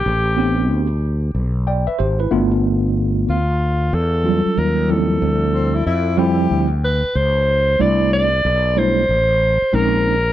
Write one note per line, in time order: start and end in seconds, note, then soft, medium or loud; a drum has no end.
0.00 1.03 G4 medium
0.06 0.70 A1 loud
0.37 0.86 B3 medium
0.37 0.86 C4 medium
0.37 0.86 D4 medium
0.37 0.87 G4 medium
0.70 1.32 D2 medium
1.35 1.85 B1 medium
1.67 1.87 D5 medium
1.67 1.86 G5 medium
1.87 1.99 B4 medium
1.87 1.98 E5 medium
1.87 muted fretless electric bass stroke soft
1.99 2.30 G#1 medium
1.99 2.19 G4 medium
1.99 2.18 C5 medium
2.20 2.51 E4 medium
2.20 2.50 B4 medium
2.31 3.24 G1 medium
2.31 3.36 A3 medium
2.31 3.36 B3 medium
2.31 3.36 D4 medium
2.31 3.37 F4 medium
3.28 3.90 D2 medium
3.28 3.96 F4 medium
3.93 4.43 E2 loud
3.93 4.60 A4 medium
4.24 5.17 F#3 medium
4.24 4.88 G3 medium
4.24 5.17 C#4 medium
4.24 5.17 F4 medium
4.46 muted fretless electric bass stroke soft
4.57 5.19 D#2 loud
4.57 4.92 A#4 medium
4.88 5.81 F3 medium
4.88 5.81 G3 medium
4.88 5.82 C4 medium
4.88 5.82 E4 medium
4.88 6.19 A4 medium
5.22 5.83 D2 loud
5.54 5.76 C4 medium
5.74 5.86 E4 medium
5.86 6.48 F2 medium
5.86 6.20 E4 loud
6.17 6.67 F3 medium
6.17 6.67 G3 medium
6.17 6.67 C4 medium
6.17 6.67 E4 medium
6.17 6.71 G4 loud
6.51 7.01 D2 medium
6.85 7.18 B4 loud
7.04 muted fretless electric bass stroke soft
7.15 7.77 C#2 medium
7.15 7.83 C5 loud
7.79 8.41 C2 medium
7.79 8.28 G3 medium
7.79 8.28 A3 medium
7.79 8.28 D4 medium
7.79 8.29 E4 medium
7.79 8.13 D5 loud
8.13 8.80 D5 loud
8.45 9.06 B1 medium
8.76 9.01 G3 medium
8.76 9.02 A3 medium
8.76 9.02 D4 medium
8.76 9.02 E4 medium
8.76 9.77 C5 loud
9.09 9.59 A1 medium
9.62 muted fretless electric bass stroke soft
9.73 10.33 A#1 loud
9.73 10.13 G#3 medium
9.73 10.14 C4 medium
9.73 10.14 C#4 medium
9.73 10.14 D#4 medium
9.73 10.33 A#4 loud